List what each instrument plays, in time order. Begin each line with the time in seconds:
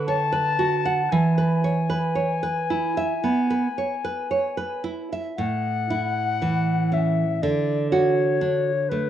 Already playing: nylon-string guitar D3 B4
0.07 nylon-string guitar C#5, flute A5
0.32 nylon-string guitar B4
0.59 nylon-string guitar F#4
0.85 nylon-string guitar F#5
1.11 nylon-string guitar E3, flute G#5
1.38 nylon-string guitar B4
1.64 nylon-string guitar C#5
1.90 nylon-string guitar B4
2.15 nylon-string guitar C#5
2.43 nylon-string guitar B4
2.70 nylon-string guitar E4
2.97 nylon-string guitar E5
3.24 nylon-string guitar B3
3.50 nylon-string guitar B4
3.78 nylon-string guitar C#5
4.04 nylon-string guitar B4
4.31 nylon-string guitar C#5
4.57 nylon-string guitar B4
4.84 nylon-string guitar E4
5.13 nylon-string guitar E5
5.37 nylon-string guitar A2, flute F#5
5.90 nylon-string guitar E4
6.42 nylon-string guitar E3
6.92 nylon-string guitar C#4, flute E5
7.42 nylon-string guitar D3, flute D5
7.91 nylon-string guitar F#4, flute C#5
8.41 nylon-string guitar D4
8.89 nylon-string guitar A3, flute B4